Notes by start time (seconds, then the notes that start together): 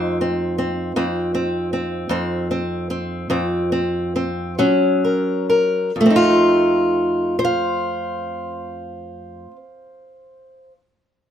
Already playing: F2 A3 C4 D#4
0.21 C4
0.58 C4
0.96 F2 C4
1.34 C4
1.73 C4
2.09 F2 C4
2.51 C4
2.90 C4
3.30 F2 C4
3.72 C4
4.16 C4
4.59 F#3 C#4
5.05 A#4
5.50 A#4
5.96 F2
6.01 A3
6.06 C4
6.10 D#4
6.16 F4
7.39 C5
7.45 F5